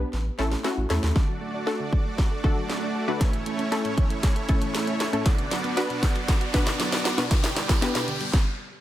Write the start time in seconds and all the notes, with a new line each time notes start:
Already playing: B3 D4 G4 B4
0.13 A1, snare
0.38 A1 A3 C#4 E4 A4, snare
0.51 snare
0.64 A3 C#4 E4 F#4, snare
0.77 A1
0.90 E2 A3 C#4 E4 A4, snare
1.03 D#2, snare
1.16 D3 A3 D4 F#4 D5, kick, snare, riser
1.28 F#3
1.41 A3
1.54 D4
1.67 A3 D4 F#4 A4, snare
1.80 D3
1.93 F#3, kick
2.05 A3
2.18 kick, snare
2.31 A4
2.44 D3 A3 D4 F#4 A4, kick
2.57 F#3
2.69 A3, snare
2.82 D4
2.95 A4
3.08 D3 A3 D4 F#4 B4
3.21 A2 C#4 E4 C#5, kick, snare, closed hi-hat
3.33 E3, closed hi-hat
3.46 A3, closed hi-hat
3.59 C#4, closed hi-hat
3.72 A3 C#4 E4 A4, snare, closed hi-hat
3.85 A2, closed hi-hat
3.98 E3, kick, closed hi-hat
4.10 A3, closed hi-hat
4.23 kick, snare, closed hi-hat
4.36 A4, closed hi-hat
4.49 A2 A3 C#4 E4 A4, kick, closed hi-hat
4.62 E3, closed hi-hat
4.75 A3, snare, closed hi-hat
4.87 C#4, closed hi-hat
5.00 A4, snare, closed hi-hat
5.13 A2 A3 C#4 E4 A4, closed hi-hat
5.26 B2 B3 D4 F#4 D5, kick, snare, closed hi-hat
5.38 D3, closed hi-hat
5.51 F#3, snare, closed hi-hat
5.64 B3, closed hi-hat
5.77 B3 D4 F#4 B4, snare, closed hi-hat
5.90 B2, closed hi-hat
6.03 D3, kick, snare, closed hi-hat
6.16 F#3, closed hi-hat
6.28 kick, snare, closed hi-hat
6.41 F#4, closed hi-hat
6.54 B2 B3 D4 F#4 B4, kick, snare, closed hi-hat
6.67 D3, snare, closed hi-hat
6.80 F#3, snare, closed hi-hat
6.92 B3, snare, closed hi-hat
7.05 F#4, snare, closed hi-hat
7.18 B2 B3 D4 F#4 B4, snare, closed hi-hat
7.31 G4, kick, snare, closed hi-hat
7.44 D3, snare, closed hi-hat
7.56 G3, snare, closed hi-hat
7.69 B3, kick, snare, closed hi-hat
7.82 B3 D4 G4 B4, snare, closed hi-hat
7.95 B2, snare, closed hi-hat
8.08 D3, closed hi-hat
8.21 G3, closed hi-hat
8.33 kick, snare